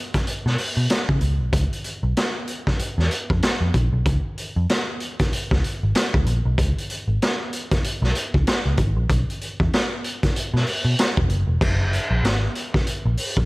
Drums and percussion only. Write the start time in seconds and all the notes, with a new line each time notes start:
0.14 kick, snare, closed hi-hat
0.27 closed hi-hat
0.47 snare
0.58 open hi-hat
0.90 snare, closed hi-hat
1.09 kick
1.21 closed hi-hat
1.53 kick, closed hi-hat
1.73 closed hi-hat
1.84 closed hi-hat
2.17 snare, closed hi-hat
2.47 closed hi-hat
2.67 kick, snare
2.79 closed hi-hat
3.00 snare
3.11 closed hi-hat
3.30 kick
3.42 snare, closed hi-hat
3.74 kick, closed hi-hat
4.06 kick, closed hi-hat
4.38 closed hi-hat
4.69 snare, closed hi-hat
5.00 closed hi-hat
5.19 kick, snare, closed hi-hat
5.33 closed hi-hat
5.51 kick, snare
5.64 closed hi-hat
5.95 snare, closed hi-hat
6.14 kick
6.26 closed hi-hat
6.58 kick, closed hi-hat
6.78 closed hi-hat
6.90 closed hi-hat
7.22 snare, closed hi-hat
7.53 closed hi-hat
7.71 kick, snare, closed hi-hat
7.84 closed hi-hat
8.04 snare
8.15 closed hi-hat
8.34 kick
8.47 snare, closed hi-hat
8.77 kick, closed hi-hat
9.10 kick, closed hi-hat
9.30 closed hi-hat
9.41 closed hi-hat
9.60 kick
9.73 snare, closed hi-hat
10.04 closed hi-hat
10.23 kick, snare, closed hi-hat
10.36 closed hi-hat
10.56 snare
10.66 open hi-hat
10.99 snare, closed hi-hat
11.17 kick
11.29 closed hi-hat
11.61 kick, crash
11.93 closed hi-hat
12.24 snare, closed hi-hat
12.55 closed hi-hat
12.74 kick, snare
12.87 closed hi-hat
13.17 open hi-hat
13.37 kick